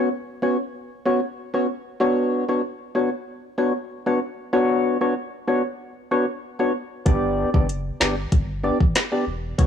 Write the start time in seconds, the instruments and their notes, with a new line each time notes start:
0.42 synth stab B3 C#4 F#4 C#5
1.05 synth stab B3 C#4 F#4 C#5
1.54 synth stab B3 C#4 F#4 C#5
2.00 synth stab B3 D4 F#4 C#5
2.49 synth stab B3 D4 F#4 C#5
2.95 synth stab B3 D4 F#4 C#5
3.58 synth stab B3 D4 F#4 C#5
4.06 synth stab B3 D4 F#4 C#5
4.53 synth stab B3 D4 F#4 C#5
5.01 synth stab B3 D4 F#4 C#5
5.47 synth stab B3 D4 F#4 C#5
6.11 synth stab B3 D4 F#4 C#5
6.59 synth stab B3 D4 F#4 C#5
7.06 sub bass G1, synth stab B3 D4 G4 D5, kick, closed hi-hat
7.54 sub bass F#1, synth stab B3 D4 G4 D5, kick
7.69 closed hi-hat
8.00 sub bass G1, synth stab B3 D4 G4 D5, finger snap, snare
8.32 sub bass G1, kick, closed hi-hat
8.64 synth stab B3 D4 G4 D5
8.80 sub bass A1, kick
8.95 finger snap, snare, closed hi-hat
9.12 synth stab B3 D4 G4 D5
9.27 sub bass E1
9.58 sub bass F#1, synth stab B3 C#4 F#4 C#5, kick, closed hi-hat